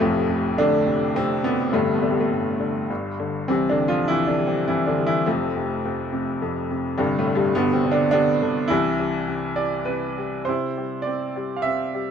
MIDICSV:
0, 0, Header, 1, 2, 480
1, 0, Start_track
1, 0, Key_signature, 0, "major"
1, 0, Tempo, 573614
1, 11, Time_signature, 3, 2, 24, 8
1, 1931, Tempo, 590551
1, 4331, Tempo, 573614
1, 7691, Tempo, 593472
1, 9983, End_track
2, 0, Start_track
2, 0, Title_t, "Upright piano"
2, 0, Program_c, 0, 0
2, 0, Control_c, 0, 64, 127
2, 0, Note_on_c, 0, 57, 82
2, 7, Note_on_c, 0, 41, 65
2, 9, Note_on_c, 0, 48, 61
2, 11, Note_on_c, 0, 29, 62
2, 15, Note_on_c, 0, 45, 64
2, 16, Note_on_c, 0, 53, 57
2, 22, Control_c, 0, 64, 0
2, 163, Control_c, 0, 64, 127
2, 235, Note_off_c, 0, 48, 0
2, 247, Note_on_c, 0, 48, 52
2, 456, Note_off_c, 0, 45, 0
2, 456, Note_off_c, 0, 53, 0
2, 468, Note_off_c, 0, 41, 0
2, 480, Note_on_c, 0, 41, 47
2, 488, Note_on_c, 0, 62, 94
2, 493, Note_off_c, 0, 57, 0
2, 499, Note_on_c, 0, 50, 71
2, 506, Note_on_c, 0, 57, 69
2, 708, Note_off_c, 0, 48, 0
2, 720, Note_on_c, 0, 48, 56
2, 939, Note_off_c, 0, 50, 0
2, 942, Note_off_c, 0, 57, 0
2, 950, Note_off_c, 0, 41, 0
2, 963, Note_on_c, 0, 41, 52
2, 971, Note_off_c, 0, 48, 0
2, 971, Note_on_c, 0, 60, 85
2, 981, Note_off_c, 0, 62, 0
2, 984, Note_on_c, 0, 48, 69
2, 1189, Note_off_c, 0, 48, 0
2, 1192, Note_off_c, 0, 60, 0
2, 1201, Note_on_c, 0, 48, 48
2, 1207, Note_on_c, 0, 59, 85
2, 1220, Note_on_c, 0, 47, 61
2, 1412, Note_off_c, 0, 29, 0
2, 1430, Note_off_c, 0, 41, 0
2, 1430, Note_off_c, 0, 59, 0
2, 1437, Note_off_c, 0, 47, 0
2, 1437, Note_off_c, 0, 48, 0
2, 1442, Note_on_c, 0, 31, 57
2, 1444, Note_on_c, 0, 43, 69
2, 1451, Note_on_c, 0, 57, 76
2, 1452, Note_on_c, 0, 48, 53
2, 1453, Note_on_c, 0, 50, 53
2, 1455, Control_c, 0, 64, 0
2, 1456, Note_on_c, 0, 45, 49
2, 1579, Control_c, 0, 64, 127
2, 1620, Note_off_c, 0, 48, 0
2, 1620, Note_off_c, 0, 57, 0
2, 1621, Note_off_c, 0, 50, 0
2, 1622, Note_on_c, 0, 59, 58
2, 1623, Note_off_c, 0, 45, 0
2, 1688, Note_on_c, 0, 57, 64
2, 1692, Note_on_c, 0, 50, 51
2, 1701, Note_off_c, 0, 59, 0
2, 1761, Note_on_c, 0, 55, 57
2, 1772, Note_off_c, 0, 57, 0
2, 1844, Note_on_c, 0, 57, 67
2, 1846, Note_off_c, 0, 55, 0
2, 1925, Note_off_c, 0, 57, 0
2, 1927, Note_off_c, 0, 43, 0
2, 1939, Note_on_c, 0, 43, 46
2, 2156, Note_off_c, 0, 50, 0
2, 2168, Note_on_c, 0, 50, 48
2, 2376, Note_off_c, 0, 31, 0
2, 2400, Note_off_c, 0, 43, 0
2, 2403, Note_off_c, 0, 50, 0
2, 2412, Note_on_c, 0, 43, 51
2, 2414, Note_on_c, 0, 31, 54
2, 2422, Control_c, 0, 64, 0
2, 2567, Control_c, 0, 64, 127
2, 2654, Note_on_c, 0, 50, 46
2, 2863, Note_off_c, 0, 31, 0
2, 2880, Note_off_c, 0, 43, 0
2, 2886, Note_on_c, 0, 60, 78
2, 2887, Note_off_c, 0, 50, 0
2, 2895, Note_on_c, 0, 36, 51
2, 2896, Note_on_c, 0, 48, 54
2, 2902, Note_on_c, 0, 52, 57
2, 2903, Note_on_c, 0, 55, 51
2, 2905, Control_c, 0, 64, 0
2, 3039, Note_off_c, 0, 60, 0
2, 3048, Note_off_c, 0, 52, 0
2, 3049, Note_off_c, 0, 55, 0
2, 3059, Note_on_c, 0, 62, 71
2, 3068, Control_c, 0, 64, 127
2, 3076, Note_on_c, 0, 50, 59
2, 3142, Note_on_c, 0, 55, 42
2, 3207, Note_off_c, 0, 62, 0
2, 3211, Note_on_c, 0, 65, 84
2, 3216, Note_off_c, 0, 50, 0
2, 3225, Note_on_c, 0, 53, 63
2, 3371, Note_off_c, 0, 53, 0
2, 3371, Note_on_c, 0, 64, 91
2, 3372, Note_off_c, 0, 48, 0
2, 3380, Note_off_c, 0, 65, 0
2, 3384, Note_on_c, 0, 48, 45
2, 3390, Note_on_c, 0, 52, 64
2, 3524, Note_off_c, 0, 64, 0
2, 3528, Note_on_c, 0, 62, 65
2, 3534, Note_off_c, 0, 52, 0
2, 3545, Note_on_c, 0, 50, 44
2, 3608, Note_off_c, 0, 55, 0
2, 3620, Note_on_c, 0, 55, 45
2, 3682, Note_off_c, 0, 62, 0
2, 3690, Note_off_c, 0, 48, 0
2, 3690, Note_on_c, 0, 60, 65
2, 3691, Note_off_c, 0, 50, 0
2, 3702, Note_on_c, 0, 48, 49
2, 3842, Note_off_c, 0, 60, 0
2, 3847, Note_off_c, 0, 48, 0
2, 3855, Note_on_c, 0, 64, 73
2, 3859, Note_on_c, 0, 48, 46
2, 3876, Note_on_c, 0, 52, 60
2, 4009, Note_on_c, 0, 62, 61
2, 4015, Note_off_c, 0, 52, 0
2, 4019, Note_on_c, 0, 50, 56
2, 4020, Note_off_c, 0, 64, 0
2, 4093, Note_off_c, 0, 55, 0
2, 4105, Note_on_c, 0, 55, 47
2, 4165, Note_off_c, 0, 50, 0
2, 4172, Note_on_c, 0, 64, 83
2, 4175, Note_off_c, 0, 62, 0
2, 4182, Note_on_c, 0, 52, 59
2, 4300, Note_off_c, 0, 36, 0
2, 4318, Note_off_c, 0, 48, 0
2, 4325, Note_off_c, 0, 52, 0
2, 4330, Note_off_c, 0, 55, 0
2, 4332, Note_on_c, 0, 60, 72
2, 4336, Note_off_c, 0, 64, 0
2, 4338, Note_on_c, 0, 57, 50
2, 4340, Note_on_c, 0, 53, 54
2, 4341, Control_c, 0, 64, 0
2, 4341, Note_on_c, 0, 41, 56
2, 4341, Note_on_c, 0, 48, 49
2, 4342, Note_on_c, 0, 29, 58
2, 4495, Control_c, 0, 64, 127
2, 4570, Note_off_c, 0, 48, 0
2, 4583, Note_on_c, 0, 48, 43
2, 4780, Note_off_c, 0, 60, 0
2, 4783, Note_off_c, 0, 57, 0
2, 4784, Note_off_c, 0, 53, 0
2, 4812, Note_off_c, 0, 41, 0
2, 4825, Note_on_c, 0, 41, 52
2, 5043, Note_off_c, 0, 48, 0
2, 5056, Note_on_c, 0, 48, 54
2, 5288, Note_off_c, 0, 41, 0
2, 5300, Note_on_c, 0, 41, 54
2, 5528, Note_off_c, 0, 48, 0
2, 5541, Note_on_c, 0, 48, 52
2, 5746, Note_off_c, 0, 29, 0
2, 5764, Note_off_c, 0, 41, 0
2, 5764, Note_off_c, 0, 48, 0
2, 5766, Note_on_c, 0, 55, 84
2, 5771, Note_on_c, 0, 31, 60
2, 5773, Note_on_c, 0, 43, 69
2, 5777, Note_on_c, 0, 48, 58
2, 5783, Note_on_c, 0, 50, 57
2, 5786, Control_c, 0, 64, 0
2, 5919, Note_off_c, 0, 55, 0
2, 5924, Note_off_c, 0, 48, 0
2, 5928, Note_off_c, 0, 50, 0
2, 5929, Control_c, 0, 64, 127
2, 5942, Note_on_c, 0, 57, 71
2, 5944, Note_on_c, 0, 45, 62
2, 6016, Note_on_c, 0, 50, 45
2, 6082, Note_on_c, 0, 55, 82
2, 6084, Note_off_c, 0, 43, 0
2, 6087, Note_off_c, 0, 45, 0
2, 6096, Note_on_c, 0, 43, 60
2, 6101, Note_off_c, 0, 57, 0
2, 6215, Note_off_c, 0, 31, 0
2, 6240, Note_off_c, 0, 43, 0
2, 6244, Note_off_c, 0, 50, 0
2, 6247, Note_on_c, 0, 59, 85
2, 6249, Note_off_c, 0, 55, 0
2, 6256, Note_on_c, 0, 31, 55
2, 6258, Control_c, 0, 64, 0
2, 6260, Note_on_c, 0, 43, 65
2, 6261, Note_on_c, 0, 55, 62
2, 6263, Note_on_c, 0, 47, 58
2, 6263, Note_on_c, 0, 50, 61
2, 6382, Control_c, 0, 64, 127
2, 6398, Note_on_c, 0, 60, 68
2, 6402, Note_off_c, 0, 55, 0
2, 6403, Note_off_c, 0, 47, 0
2, 6403, Note_off_c, 0, 50, 0
2, 6410, Note_off_c, 0, 59, 0
2, 6410, Note_on_c, 0, 48, 60
2, 6491, Note_on_c, 0, 50, 56
2, 6551, Note_on_c, 0, 62, 89
2, 6553, Note_off_c, 0, 50, 0
2, 6556, Note_off_c, 0, 48, 0
2, 6565, Note_on_c, 0, 50, 67
2, 6566, Note_off_c, 0, 60, 0
2, 6704, Note_off_c, 0, 62, 0
2, 6714, Note_off_c, 0, 50, 0
2, 6716, Note_on_c, 0, 62, 101
2, 6728, Note_on_c, 0, 59, 74
2, 6729, Note_on_c, 0, 50, 67
2, 6730, Note_on_c, 0, 55, 55
2, 6963, Note_off_c, 0, 50, 0
2, 6976, Note_on_c, 0, 50, 54
2, 7175, Note_off_c, 0, 59, 0
2, 7177, Note_off_c, 0, 31, 0
2, 7184, Note_off_c, 0, 43, 0
2, 7189, Note_on_c, 0, 64, 95
2, 7195, Note_off_c, 0, 55, 0
2, 7205, Note_off_c, 0, 50, 0
2, 7208, Note_on_c, 0, 52, 69
2, 7209, Note_on_c, 0, 55, 70
2, 7215, Note_on_c, 0, 36, 69
2, 7216, Note_on_c, 0, 48, 68
2, 7217, Note_off_c, 0, 62, 0
2, 7218, Control_c, 0, 64, 0
2, 7387, Control_c, 0, 64, 127
2, 7440, Note_off_c, 0, 55, 0
2, 7452, Note_on_c, 0, 55, 48
2, 7682, Note_off_c, 0, 48, 0
2, 7694, Note_on_c, 0, 48, 49
2, 7914, Note_off_c, 0, 55, 0
2, 7920, Note_on_c, 0, 74, 73
2, 7926, Note_on_c, 0, 55, 47
2, 8133, Note_off_c, 0, 64, 0
2, 8142, Note_off_c, 0, 52, 0
2, 8151, Note_off_c, 0, 74, 0
2, 8156, Note_on_c, 0, 71, 62
2, 8164, Note_off_c, 0, 48, 0
2, 8176, Note_on_c, 0, 48, 39
2, 8406, Note_off_c, 0, 55, 0
2, 8419, Note_on_c, 0, 55, 40
2, 8617, Note_off_c, 0, 71, 0
2, 8630, Note_off_c, 0, 36, 0
2, 8640, Note_on_c, 0, 72, 74
2, 8645, Note_off_c, 0, 48, 0
2, 8652, Note_off_c, 0, 55, 0
2, 8662, Note_on_c, 0, 48, 51
2, 8669, Control_c, 0, 64, 0
2, 8672, Note_on_c, 0, 64, 52
2, 8796, Control_c, 0, 64, 127
2, 8904, Note_on_c, 0, 55, 41
2, 9096, Note_off_c, 0, 72, 0
2, 9102, Note_on_c, 0, 74, 69
2, 9142, Note_on_c, 0, 60, 44
2, 9351, Note_off_c, 0, 64, 0
2, 9364, Note_off_c, 0, 55, 0
2, 9376, Note_on_c, 0, 55, 50
2, 9542, Note_on_c, 0, 77, 51
2, 9555, Note_off_c, 0, 74, 0
2, 9588, Note_on_c, 0, 76, 84
2, 9604, Note_off_c, 0, 60, 0
2, 9607, Note_off_c, 0, 77, 0
2, 9616, Note_on_c, 0, 60, 40
2, 9836, Note_off_c, 0, 55, 0
2, 9849, Note_on_c, 0, 55, 42
2, 9983, Note_off_c, 0, 48, 0
2, 9983, Note_off_c, 0, 55, 0
2, 9983, Note_off_c, 0, 60, 0
2, 9983, Note_off_c, 0, 76, 0
2, 9983, End_track
0, 0, End_of_file